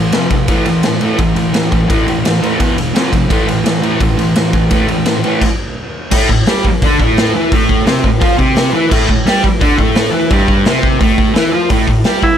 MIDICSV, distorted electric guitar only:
0, 0, Header, 1, 3, 480
1, 0, Start_track
1, 0, Key_signature, 0, "minor"
1, 0, Tempo, 352113
1, 658, Time_signature, 4, 2, 24, 8
1, 8819, Tempo, 348837
1, 16949, End_track
2, 0, Start_track
2, 0, Title_t, "Distorted electric guitar"
2, 0, Program_c, 0, 30
2, 0, Note_on_c, 0, 45, 67
2, 0, Note_on_c, 0, 52, 70
2, 156, Note_off_c, 0, 45, 0
2, 157, Note_off_c, 0, 52, 0
2, 173, Note_on_c, 0, 41, 87
2, 187, Note_on_c, 0, 48, 82
2, 194, Note_on_c, 0, 53, 90
2, 397, Note_off_c, 0, 41, 0
2, 402, Note_off_c, 0, 48, 0
2, 412, Note_off_c, 0, 53, 0
2, 413, Note_on_c, 0, 41, 64
2, 418, Note_on_c, 0, 48, 79
2, 632, Note_off_c, 0, 41, 0
2, 634, Note_off_c, 0, 48, 0
2, 646, Note_on_c, 0, 45, 80
2, 662, Note_on_c, 0, 52, 90
2, 669, Note_on_c, 0, 57, 97
2, 867, Note_off_c, 0, 45, 0
2, 878, Note_off_c, 0, 52, 0
2, 884, Note_on_c, 0, 45, 63
2, 890, Note_off_c, 0, 57, 0
2, 894, Note_on_c, 0, 52, 81
2, 1107, Note_off_c, 0, 45, 0
2, 1113, Note_off_c, 0, 52, 0
2, 1151, Note_on_c, 0, 45, 77
2, 1156, Note_on_c, 0, 52, 83
2, 1361, Note_off_c, 0, 45, 0
2, 1364, Note_off_c, 0, 52, 0
2, 1378, Note_on_c, 0, 45, 84
2, 1385, Note_on_c, 0, 52, 96
2, 1397, Note_on_c, 0, 57, 105
2, 1589, Note_off_c, 0, 45, 0
2, 1592, Note_off_c, 0, 52, 0
2, 1605, Note_on_c, 0, 45, 71
2, 1608, Note_on_c, 0, 52, 90
2, 1614, Note_off_c, 0, 57, 0
2, 1828, Note_off_c, 0, 45, 0
2, 1830, Note_off_c, 0, 52, 0
2, 1843, Note_on_c, 0, 45, 64
2, 1854, Note_on_c, 0, 52, 84
2, 2067, Note_off_c, 0, 45, 0
2, 2073, Note_off_c, 0, 52, 0
2, 2094, Note_on_c, 0, 45, 71
2, 2102, Note_on_c, 0, 52, 80
2, 2313, Note_off_c, 0, 45, 0
2, 2317, Note_off_c, 0, 52, 0
2, 2340, Note_on_c, 0, 45, 67
2, 2353, Note_on_c, 0, 52, 77
2, 2542, Note_off_c, 0, 45, 0
2, 2558, Note_off_c, 0, 52, 0
2, 2558, Note_on_c, 0, 45, 86
2, 2574, Note_on_c, 0, 52, 86
2, 2580, Note_on_c, 0, 57, 101
2, 2795, Note_off_c, 0, 45, 0
2, 2803, Note_off_c, 0, 52, 0
2, 2806, Note_off_c, 0, 57, 0
2, 2814, Note_on_c, 0, 45, 68
2, 2826, Note_on_c, 0, 52, 70
2, 3033, Note_off_c, 0, 45, 0
2, 3039, Note_off_c, 0, 52, 0
2, 3069, Note_on_c, 0, 52, 90
2, 3075, Note_on_c, 0, 45, 72
2, 3271, Note_off_c, 0, 45, 0
2, 3281, Note_off_c, 0, 52, 0
2, 3287, Note_on_c, 0, 45, 85
2, 3297, Note_on_c, 0, 52, 95
2, 3313, Note_on_c, 0, 57, 99
2, 3520, Note_off_c, 0, 45, 0
2, 3522, Note_on_c, 0, 40, 88
2, 3525, Note_off_c, 0, 52, 0
2, 3533, Note_off_c, 0, 57, 0
2, 3537, Note_on_c, 0, 47, 88
2, 3543, Note_on_c, 0, 52, 97
2, 3750, Note_off_c, 0, 40, 0
2, 3754, Note_off_c, 0, 47, 0
2, 3767, Note_on_c, 0, 40, 68
2, 3768, Note_off_c, 0, 52, 0
2, 3770, Note_on_c, 0, 47, 71
2, 3990, Note_off_c, 0, 40, 0
2, 3992, Note_off_c, 0, 47, 0
2, 4008, Note_on_c, 0, 41, 92
2, 4017, Note_on_c, 0, 48, 88
2, 4029, Note_on_c, 0, 53, 103
2, 4231, Note_off_c, 0, 41, 0
2, 4237, Note_off_c, 0, 48, 0
2, 4247, Note_on_c, 0, 41, 73
2, 4251, Note_off_c, 0, 53, 0
2, 4253, Note_on_c, 0, 48, 78
2, 4471, Note_off_c, 0, 41, 0
2, 4474, Note_off_c, 0, 48, 0
2, 4489, Note_on_c, 0, 45, 94
2, 4498, Note_on_c, 0, 52, 89
2, 4511, Note_on_c, 0, 57, 99
2, 4707, Note_off_c, 0, 45, 0
2, 4709, Note_off_c, 0, 52, 0
2, 4723, Note_on_c, 0, 45, 66
2, 4725, Note_on_c, 0, 52, 75
2, 4733, Note_off_c, 0, 57, 0
2, 4944, Note_off_c, 0, 45, 0
2, 4950, Note_off_c, 0, 52, 0
2, 4960, Note_on_c, 0, 45, 72
2, 4965, Note_on_c, 0, 52, 84
2, 5188, Note_off_c, 0, 45, 0
2, 5191, Note_off_c, 0, 52, 0
2, 5208, Note_on_c, 0, 45, 93
2, 5221, Note_on_c, 0, 52, 98
2, 5237, Note_on_c, 0, 57, 106
2, 5442, Note_off_c, 0, 45, 0
2, 5442, Note_off_c, 0, 52, 0
2, 5456, Note_off_c, 0, 57, 0
2, 5456, Note_on_c, 0, 45, 83
2, 5459, Note_on_c, 0, 52, 95
2, 5669, Note_off_c, 0, 45, 0
2, 5670, Note_off_c, 0, 52, 0
2, 5686, Note_on_c, 0, 45, 64
2, 5686, Note_on_c, 0, 52, 76
2, 5911, Note_off_c, 0, 45, 0
2, 5912, Note_off_c, 0, 52, 0
2, 5937, Note_on_c, 0, 45, 70
2, 5953, Note_on_c, 0, 52, 75
2, 6157, Note_off_c, 0, 45, 0
2, 6165, Note_off_c, 0, 52, 0
2, 6181, Note_on_c, 0, 45, 70
2, 6182, Note_on_c, 0, 52, 79
2, 6388, Note_off_c, 0, 45, 0
2, 6399, Note_off_c, 0, 52, 0
2, 6404, Note_on_c, 0, 45, 87
2, 6418, Note_on_c, 0, 52, 85
2, 6423, Note_on_c, 0, 57, 92
2, 6618, Note_off_c, 0, 45, 0
2, 6634, Note_off_c, 0, 52, 0
2, 6634, Note_on_c, 0, 45, 64
2, 6649, Note_off_c, 0, 57, 0
2, 6651, Note_on_c, 0, 52, 76
2, 6865, Note_off_c, 0, 45, 0
2, 6874, Note_off_c, 0, 52, 0
2, 6895, Note_on_c, 0, 45, 86
2, 6907, Note_on_c, 0, 52, 82
2, 7116, Note_off_c, 0, 45, 0
2, 7121, Note_off_c, 0, 52, 0
2, 7141, Note_on_c, 0, 45, 90
2, 7151, Note_on_c, 0, 52, 97
2, 7161, Note_on_c, 0, 57, 97
2, 7368, Note_off_c, 0, 45, 0
2, 7373, Note_off_c, 0, 52, 0
2, 7378, Note_off_c, 0, 57, 0
2, 8330, Note_on_c, 0, 45, 90
2, 8345, Note_on_c, 0, 57, 96
2, 8568, Note_off_c, 0, 45, 0
2, 8575, Note_off_c, 0, 57, 0
2, 8587, Note_on_c, 0, 45, 72
2, 8775, Note_off_c, 0, 45, 0
2, 8816, Note_on_c, 0, 55, 101
2, 8827, Note_on_c, 0, 67, 116
2, 9052, Note_off_c, 0, 55, 0
2, 9057, Note_off_c, 0, 67, 0
2, 9310, Note_on_c, 0, 50, 93
2, 9326, Note_on_c, 0, 62, 104
2, 9539, Note_off_c, 0, 50, 0
2, 9547, Note_off_c, 0, 62, 0
2, 9554, Note_on_c, 0, 45, 87
2, 9569, Note_on_c, 0, 57, 95
2, 10017, Note_off_c, 0, 45, 0
2, 10023, Note_on_c, 0, 52, 92
2, 10030, Note_off_c, 0, 57, 0
2, 10047, Note_on_c, 0, 64, 106
2, 10256, Note_off_c, 0, 52, 0
2, 10269, Note_off_c, 0, 64, 0
2, 10269, Note_on_c, 0, 45, 98
2, 10281, Note_on_c, 0, 57, 107
2, 10721, Note_off_c, 0, 45, 0
2, 10727, Note_on_c, 0, 48, 100
2, 10741, Note_off_c, 0, 57, 0
2, 10746, Note_on_c, 0, 60, 110
2, 10969, Note_off_c, 0, 48, 0
2, 10979, Note_off_c, 0, 60, 0
2, 10989, Note_on_c, 0, 45, 77
2, 11179, Note_off_c, 0, 45, 0
2, 11202, Note_on_c, 0, 53, 94
2, 11224, Note_on_c, 0, 65, 110
2, 11435, Note_off_c, 0, 53, 0
2, 11441, Note_on_c, 0, 48, 89
2, 11447, Note_off_c, 0, 65, 0
2, 11452, Note_on_c, 0, 60, 101
2, 11923, Note_off_c, 0, 48, 0
2, 11928, Note_on_c, 0, 52, 98
2, 11932, Note_off_c, 0, 60, 0
2, 11946, Note_on_c, 0, 64, 107
2, 12158, Note_off_c, 0, 52, 0
2, 12164, Note_on_c, 0, 45, 102
2, 12178, Note_off_c, 0, 64, 0
2, 12186, Note_on_c, 0, 57, 109
2, 12390, Note_off_c, 0, 45, 0
2, 12406, Note_on_c, 0, 45, 76
2, 12418, Note_off_c, 0, 57, 0
2, 12607, Note_off_c, 0, 45, 0
2, 12654, Note_on_c, 0, 55, 99
2, 12666, Note_on_c, 0, 67, 109
2, 12892, Note_off_c, 0, 55, 0
2, 12898, Note_off_c, 0, 67, 0
2, 13119, Note_on_c, 0, 50, 102
2, 13136, Note_on_c, 0, 62, 109
2, 13359, Note_off_c, 0, 50, 0
2, 13364, Note_on_c, 0, 45, 98
2, 13373, Note_off_c, 0, 62, 0
2, 13387, Note_on_c, 0, 57, 107
2, 13828, Note_off_c, 0, 45, 0
2, 13834, Note_on_c, 0, 52, 96
2, 13846, Note_off_c, 0, 57, 0
2, 13852, Note_on_c, 0, 64, 108
2, 14081, Note_off_c, 0, 52, 0
2, 14090, Note_off_c, 0, 64, 0
2, 14093, Note_on_c, 0, 43, 96
2, 14109, Note_on_c, 0, 55, 110
2, 14570, Note_off_c, 0, 43, 0
2, 14577, Note_on_c, 0, 48, 89
2, 14578, Note_off_c, 0, 55, 0
2, 14599, Note_on_c, 0, 60, 112
2, 15042, Note_off_c, 0, 48, 0
2, 15048, Note_on_c, 0, 45, 102
2, 15055, Note_off_c, 0, 60, 0
2, 15060, Note_on_c, 0, 57, 113
2, 15518, Note_off_c, 0, 45, 0
2, 15524, Note_on_c, 0, 52, 98
2, 15533, Note_off_c, 0, 57, 0
2, 15541, Note_on_c, 0, 64, 98
2, 15764, Note_off_c, 0, 52, 0
2, 15769, Note_on_c, 0, 53, 91
2, 15773, Note_off_c, 0, 64, 0
2, 15793, Note_on_c, 0, 65, 102
2, 16007, Note_off_c, 0, 53, 0
2, 16014, Note_on_c, 0, 45, 96
2, 16019, Note_off_c, 0, 65, 0
2, 16028, Note_on_c, 0, 57, 107
2, 16240, Note_off_c, 0, 45, 0
2, 16257, Note_off_c, 0, 57, 0
2, 16257, Note_on_c, 0, 45, 73
2, 16450, Note_off_c, 0, 45, 0
2, 16496, Note_on_c, 0, 55, 97
2, 16513, Note_on_c, 0, 67, 105
2, 16730, Note_off_c, 0, 55, 0
2, 16739, Note_off_c, 0, 67, 0
2, 16949, End_track
3, 0, Start_track
3, 0, Title_t, "Muted distorted electric guitar strokes"
3, 9072, Note_on_c, 9, 29, 62
3, 9209, Note_off_c, 9, 29, 0
3, 12884, Note_on_c, 9, 29, 61
3, 13022, Note_off_c, 9, 29, 0
3, 16754, Note_on_c, 9, 29, 61
3, 16891, Note_off_c, 9, 29, 0
3, 16949, End_track
0, 0, End_of_file